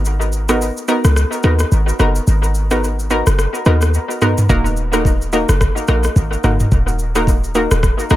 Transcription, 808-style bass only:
0.00 0.71 G#1 loud
1.05 1.25 C#2 medium
1.44 1.64 D#2 medium
1.72 1.92 G#1 loud
2.00 2.20 F#1 medium
2.27 3.23 G#1 loud
3.27 3.47 F#1 medium
3.66 3.98 D#2 medium
4.50 5.45 D#1 loud
5.49 5.69 F#1 medium
5.88 6.09 A#1 medium
6.16 6.37 G#1 loud
6.44 6.64 F#1 medium
6.72 7.67 D#1 loud
7.71 7.92 D#1 medium
8.11 8.16 A#1 medium

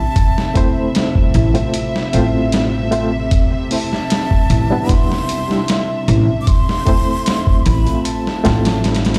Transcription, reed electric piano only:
0.00 0.13 G3 medium
0.00 0.14 D4 medium
0.00 0.14 E4 medium
0.00 0.15 E5 medium
0.54 1.49 A3 loud
0.54 1.50 C4 medium
0.54 1.50 E4 medium
0.54 1.51 C5 loud
1.54 2.08 A3 medium
1.54 2.09 C4 medium
1.54 2.09 F4 medium
1.54 2.09 C5 medium
2.13 2.88 A3 loud
2.13 2.88 C4 medium
2.13 2.88 F4 medium
2.13 2.88 C5 loud
2.91 3.11 A3 loud
2.91 3.12 C4 medium
2.91 3.12 F4 medium
2.91 3.12 C5 loud
3.71 3.91 A3 medium
3.71 3.91 C4 medium
3.71 3.91 E4 medium
3.71 3.91 C5 medium
4.70 5.45 G3 loud
4.70 5.45 B3 loud
4.70 5.45 D4 medium
4.70 5.45 E4 medium
5.48 6.44 G3 medium
5.48 6.45 D4 medium
5.48 6.46 E4 medium
5.48 6.46 E5 medium
6.85 7.81 A3 loud
6.85 7.81 C4 medium
6.85 7.82 E4 medium
6.85 7.82 C5 loud
7.86 8.40 A3 medium
7.86 8.40 C4 medium
7.86 8.40 F4 medium
7.86 8.41 C5 medium
8.44 9.19 A3 loud
8.44 9.19 C4 medium
8.44 9.19 F4 medium
8.44 9.19 C5 loud

